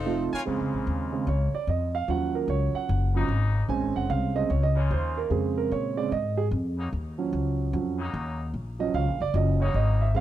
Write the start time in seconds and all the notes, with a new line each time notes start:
Already playing: F1 F3 C4 D#4 A4
0.06 F3 A3 C4 D#4 F4
0.32 F4 A#4 C#5 G#5, muted upright bass stroke
0.45 F2 C#3 G#3 A#3 C4 F4
0.60 C#2
0.74 A#1
0.87 D#2
1.13 C#3 G#3 C4
1.27 C#2 C#5
1.53 D5, muted upright bass stroke
1.67 F2 D#5
1.95 F5
2.08 D#2 F3 F#3 C#4 F#5
2.35 A#4
2.48 C#2 C#5
2.74 F#5, muted upright bass stroke
2.89 F#1
3.14 C#3 F3 F#3 A#3 C#4 D#4
3.28 G#1
3.68 A#1 G#3 C4 C#4 G#5
3.83 G#1
3.96 F1 F#5
4.10 C2 F5
4.35 C#3 G#3 C4 D#5
4.50 C#2 C#5
4.63 D#5
4.75 C#3 G#3 A#3 F4 C#5
4.91 D#2 C5
5.17 A#4
5.30 F2 C#3 G#3 C4 G#4
5.58 A#4
5.71 A#2 C#5
5.97 C#3 G#3 C4 D5
6.12 G#2 D#5
6.37 G#4
6.51 F2
6.77 C#3 F#3 A#3 D#4
6.93 D#2
7.18 F3 F#3 C#4
7.33 C#2
7.73 F2 F3 F#3 C#4
7.98 C#3 F#3 A#3 D#4
8.14 D#2
8.54 A#1
8.79 F3 F#3 C#4 D#5
8.94 C#2 F5
9.08 A#1
9.20 F#1 D5
9.34 F#1 F3 F#3 C#4 D#5
9.60 C#3 F#3 A#3 D#4 C#5
9.74 G#1 D#5
10.01 E5
10.14 A#1 C#3 G#3 C4 F5